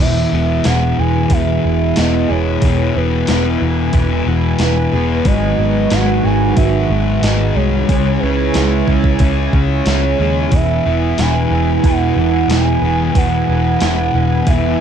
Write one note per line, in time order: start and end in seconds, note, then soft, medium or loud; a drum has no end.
0.00 0.25 E1 medium
0.00 0.65 E2 medium
0.00 0.33 B2 medium
0.00 0.96 E3 medium
0.00 5.25 E3 medium
0.00 0.32 E3 medium
0.00 5.26 G#3 medium
0.00 5.26 B3 medium
0.00 5.22 E4 medium
0.00 5.27 E4 medium
0.00 7.85 B4 medium
0.00 0.67 E5 loud
0.00 7.85 G#5 medium
0.32 0.60 E1 medium
0.32 0.65 B2 medium
0.32 0.66 E3 medium
0.32 1.64 B3 medium
0.64 0.93 E1 medium
0.64 1.30 E2 medium
0.64 0.99 B2 medium
0.64 0.98 E3 medium
0.64 1.29 E4 medium
0.64 1.00 F#5 loud
0.64 snare loud
0.64 open hi-hat medium
0.97 1.25 E1 medium
0.97 1.31 B2 medium
0.97 2.61 E3 medium
0.97 1.32 E3 medium
0.97 1.34 G#5 loud
1.30 1.58 E1 medium
1.30 1.95 E2 medium
1.30 1.65 B2 medium
1.30 1.63 E3 medium
1.30 1.95 E4 medium
1.30 2.00 E5 loud
1.30 kick medium
1.30 open hi-hat medium
1.64 1.92 E1 medium
1.64 1.97 B2 medium
1.64 1.98 E3 medium
1.64 2.95 B3 medium
1.96 2.25 E1 medium
1.96 2.62 E2 medium
1.96 2.30 B2 medium
1.96 2.29 E3 medium
1.96 3.27 E4 medium
1.96 2.32 D#5 medium
1.96 snare loud
1.96 open hi-hat medium
2.29 2.57 E1 medium
2.29 2.63 B2 medium
2.29 2.64 E3 medium
2.29 4.92 G#4 medium
2.29 2.98 C#5 loud
2.62 2.90 E1 medium
2.62 3.27 E2 medium
2.62 2.96 B2 medium
2.62 3.58 E3 medium
2.62 2.94 E3 medium
2.62 kick loud
2.62 open hi-hat soft
2.95 3.23 E1 medium
2.95 3.28 B2 medium
2.95 3.29 E3 medium
2.95 4.24 B3 medium
2.95 3.62 B4 medium
3.27 3.56 E1 medium
3.27 3.94 E2 medium
3.27 3.63 B2 medium
3.27 3.61 E3 medium
3.27 3.93 E4 medium
3.27 snare loud
3.27 open hi-hat medium
3.59 3.89 E1 medium
3.59 5.25 E3 medium
3.59 3.96 E3 medium
3.64 3.95 B2 medium
3.93 4.21 E1 medium
3.93 4.59 E2 medium
3.93 4.28 B2 medium
3.93 4.58 E4 medium
3.93 kick loud
3.93 open hi-hat soft
3.97 4.26 E3 loud
4.25 4.54 E1 medium
4.25 4.61 E3 medium
4.25 5.25 B3 medium
4.30 4.60 B2 medium
4.59 4.87 E1 medium
4.59 5.24 E2 medium
4.59 4.95 B2 medium
4.59 4.92 E3 medium
4.59 5.26 E4 medium
4.59 snare loud
4.59 open hi-hat medium
4.64 5.28 B4 medium
4.93 5.20 E1 medium
4.93 5.25 B2 medium
4.93 5.24 E3 medium
4.93 5.29 G#4 medium
5.23 5.53 G#1 medium
5.23 7.89 G#2 medium
5.23 5.90 G#2 medium
5.23 7.88 D#3 medium
5.23 6.24 F#3 medium
5.23 7.89 F#3 medium
5.23 7.85 F#4 medium
5.23 5.95 D#5 loud
5.23 kick loud
5.23 open hi-hat soft
5.27 5.60 D#3 medium
5.27 5.59 G#3 loud
5.27 7.90 D#4 medium
5.58 5.86 G#1 medium
5.58 5.91 D#3 medium
5.58 5.92 G#3 medium
5.58 6.90 B3 medium
5.90 6.19 G#1 medium
5.90 6.55 G#2 medium
5.90 6.25 D#3 medium
5.90 6.24 G#3 medium
5.90 6.26 F#5 loud
5.90 snare loud
5.90 open hi-hat medium
6.24 6.52 G#1 medium
6.24 6.56 D#3 medium
6.24 7.90 F#3 medium
6.24 6.58 G#3 medium
6.24 6.57 G#5 loud
6.56 6.84 G#1 medium
6.56 7.22 G#2 medium
6.56 6.91 D#3 loud
6.56 6.90 G#3 loud
6.56 7.24 E5 loud
6.56 kick loud
6.56 open hi-hat soft
6.90 7.17 G#1 medium
6.90 7.23 D#3 medium
6.90 7.25 G#3 medium
6.90 7.89 B3 medium
7.22 7.50 G#1 medium
7.22 7.87 G#2 medium
7.22 7.57 D#3 medium
7.22 7.56 G#3 medium
7.22 7.90 D#4 medium
7.22 7.57 D#5 medium
7.22 snare loud
7.22 open hi-hat medium
7.55 7.83 C2 medium
7.55 7.88 D#3 medium
7.55 7.91 G#3 medium
7.55 10.21 G#4 medium
7.55 8.21 C#5 loud
7.88 8.16 C#2 medium
7.88 10.51 C#3 medium
7.88 8.55 C#3 medium
7.88 10.53 G#3 medium
7.88 8.25 G#3 medium
7.88 10.53 C#4 medium
7.88 8.21 C#4 medium
7.88 14.80 E4 medium
7.88 10.54 E4 medium
7.88 10.49 C#5 medium
7.88 14.80 G#5 medium
7.88 kick loud
7.88 open hi-hat medium
7.92 8.22 C#4 medium
8.20 8.49 C#2 medium
8.20 8.87 C#4 medium
8.20 8.56 C#4 medium
8.20 8.87 B4 medium
8.25 8.57 G#3 medium
8.54 8.82 C#2 medium
8.54 9.19 C#3 medium
8.54 8.91 G#3 medium
8.54 8.88 C#4 medium
8.54 9.21 E4 medium
8.54 snare loud
8.54 open hi-hat medium
8.88 9.15 C#2 medium
8.88 9.21 G#3 medium
8.88 9.53 C#4 medium
8.88 9.21 C#4 medium
8.88 kick medium
9.04 kick medium
9.19 9.47 C#2 medium
9.19 9.86 C#3 medium
9.19 9.57 G#3 medium
9.19 9.53 C#4 loud
9.19 9.87 E4 medium
9.19 kick medium
9.19 open hi-hat soft
9.53 9.80 C#2 medium
9.53 9.88 G#3 medium
9.53 9.88 C#4 medium
9.53 10.53 C#4 medium
9.53 kick medium
9.86 10.13 C#2 medium
9.86 10.51 C#3 medium
9.86 10.21 G#3 medium
9.86 10.18 C#4 medium
9.86 11.19 E4 medium
9.86 10.56 C#5 medium
9.86 snare loud
9.86 open hi-hat medium
10.19 10.47 D#2 medium
10.19 10.54 G#3 medium
10.19 10.50 C#4 medium
10.19 12.83 G#4 medium
10.49 10.79 E1 medium
10.49 11.18 E2 medium
10.49 10.87 B2 medium
10.49 14.80 E3 medium
10.49 14.80 G#3 medium
10.49 14.80 B3 medium
10.49 14.80 B4 medium
10.49 kick loud
10.49 open hi-hat soft
10.54 10.85 E3 medium
10.54 10.86 B3 medium
10.54 14.80 E4 medium
10.54 11.21 E5 loud
10.85 11.13 E1 medium
10.85 11.18 B2 medium
10.85 11.20 E3 medium
10.85 11.52 B3 medium
11.18 11.46 E1 medium
11.18 11.84 E2 medium
11.18 11.52 B2 medium
11.18 11.52 E3 medium
11.18 11.83 E4 medium
11.18 11.87 G#5 loud
11.18 snare loud
11.18 open hi-hat medium
11.51 11.78 E1 medium
11.51 11.85 B2 soft
11.51 11.85 E3 medium
11.51 12.18 B3 medium
11.84 12.11 E1 medium
11.84 12.49 E2 medium
11.84 12.18 B2 medium
11.84 12.16 E3 loud
11.84 12.50 E4 medium
11.84 12.18 F#5 loud
11.84 kick loud
11.84 open hi-hat soft
12.16 12.44 E1 medium
12.16 12.50 B2 medium
12.16 12.51 E3 medium
12.16 13.15 B3 medium
12.16 12.48 F#5 loud
12.49 12.76 E1 medium
12.49 13.15 E2 medium
12.49 12.84 B2 medium
12.49 12.82 E3 medium
12.49 13.80 E4 medium
12.49 snare loud
12.49 open hi-hat medium
12.82 13.09 E1 medium
12.82 13.15 B2 medium
12.82 13.17 E3 medium
12.82 14.80 G#4 medium
13.15 13.43 E1 medium
13.15 13.80 E2 medium
13.15 13.49 B2 loud
13.15 13.47 E3 loud
13.15 13.47 B3 medium
13.15 14.50 F#5 loud
13.15 kick loud
13.15 open hi-hat medium
13.48 13.76 E1 medium
13.48 13.81 B2 medium
13.48 13.83 E3 medium
13.48 14.15 B3 medium
13.80 14.09 E1 medium
13.80 14.46 E2 medium
13.80 14.15 B2 medium
13.80 14.13 E3 medium
13.80 14.47 E4 medium
13.80 snare loud
13.80 open hi-hat medium
14.14 14.42 E1 medium
14.14 14.46 B2 medium
14.14 14.47 E3 medium
14.14 14.78 B3 medium
14.47 14.74 E1 loud
14.47 14.80 E2 medium
14.47 14.80 B2 medium
14.47 14.78 E3 medium
14.47 14.80 E4 medium
14.47 14.80 E5 loud
14.47 kick loud
14.47 open hi-hat medium